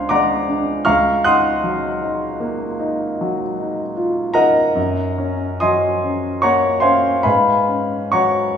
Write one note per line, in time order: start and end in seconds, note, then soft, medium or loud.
0.00 0.83 C#2 soft
0.00 0.33 D4 soft
0.00 0.89 C5 medium
0.00 0.86 F5 medium
0.00 0.88 G#5 medium
0.00 0.89 C6 medium
0.09 0.71 G#3 soft
0.09 0.83 D5 medium
0.09 0.83 F#5 medium
0.09 0.83 A#5 medium
0.09 0.86 D6 medium
0.48 0.87 D4 soft
0.85 4.72 C#2 soft
0.85 1.23 F5 medium
0.85 1.22 A#5 medium
0.85 1.22 C#6 medium
0.85 1.25 F6 medium
1.24 1.87 D#4 soft
1.24 3.92 F#5 medium
1.24 3.92 C6 medium
1.24 3.92 D#6 medium
1.24 3.96 F#6 medium
1.64 2.25 F#3 soft
2.03 2.64 D#4 soft
2.40 3.03 A#3 soft
2.80 3.42 D#4 soft
3.21 3.82 F#3 soft
3.58 4.20 D#4 soft
3.97 4.36 F4 soft
4.34 4.76 D#4 soft
4.34 5.58 A#4 medium
4.34 5.58 D#5 medium
4.34 5.58 F#5 medium
4.34 5.62 A#5 medium
4.75 7.20 F#2 medium
5.18 5.87 C#4 soft
5.60 6.27 F#3 soft
5.60 6.39 D#5 medium
5.60 6.39 G#5 medium
5.60 6.38 C6 medium
5.60 6.42 D#6 medium
6.04 6.68 C#4 soft
6.42 7.08 A#3 soft
6.42 6.80 C#5 medium
6.42 6.80 F#5 medium
6.42 6.80 A#5 medium
6.42 6.82 C#6 medium
6.80 7.24 C#4 soft
6.80 7.20 C5 soft
6.80 7.21 F5 medium
6.80 7.20 G#5 medium
6.80 7.22 C6 medium
7.23 8.57 G#2 soft
7.23 8.08 B4 soft
7.23 8.08 F5 soft
7.23 8.08 G#5 medium
7.23 8.12 B5 medium
7.68 8.41 C#4 soft
8.12 8.57 F#3 soft
8.12 8.57 C#5 soft
8.12 8.57 F#5 soft
8.12 8.57 A#5 soft
8.12 8.57 C#6 medium